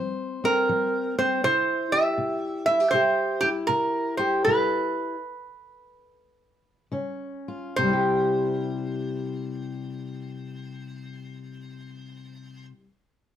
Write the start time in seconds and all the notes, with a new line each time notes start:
Already playing: F3 C4 C5
0.44 C4 A#4
0.69 F3
1.18 C4 C5
1.44 C3 E4 C5
1.92 G4 E5
2.18 C3
2.66 E4 E5
2.80 G4
2.91 C3 G4 C5
3.41 E4 G4
3.67 C3 A#4
4.17 G4 C5
4.45 C3 E4 B4
6.92 C#3 C#4
7.48 F4
7.76 C3 C5
7.83 G3
7.88 E4
7.93 G4